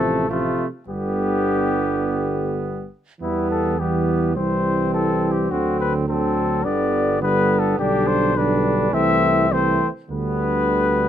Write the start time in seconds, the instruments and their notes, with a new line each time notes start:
Already playing: tuba A1, euphonium C3, french horn F3, trumpet A3 A4
0.30 euphonium C3, french horn F3, trumpet A3 F4
0.88 tuba G1, euphonium D3, french horn G3, trumpet B3 G4
3.21 tuba E2, euphonium E3, french horn G3, trumpet B3 E4
3.51 trumpet A4
3.79 euphonium E3, french horn G3, trumpet B3 G4
4.35 tuba C2, euphonium E3, french horn G3, trumpet C4 C5
4.94 trumpet A4
5.32 trumpet G4
5.50 tuba D2, euphonium D3, french horn F#3, trumpet C4 F#4
5.80 trumpet B4
6.08 euphonium D3, french horn F#3, trumpet C4 A4
6.64 tuba G1, euphonium D3, french horn G3, trumpet B3 D5
7.21 euphonium D3, french horn G3, trumpet B3 B4
7.59 trumpet A4
7.78 tuba B1, euphonium D3, french horn G3, trumpet D4 G4
8.07 trumpet C5
8.36 euphonium D3, french horn G3, trumpet D4 B4
8.92 tuba C2, euphonium E3, french horn A3, trumpet C4 E5
9.50 euphonium E3, french horn A3, trumpet C4 C5
10.08 tuba D2, euphonium D3, french horn G3, trumpet B3 B4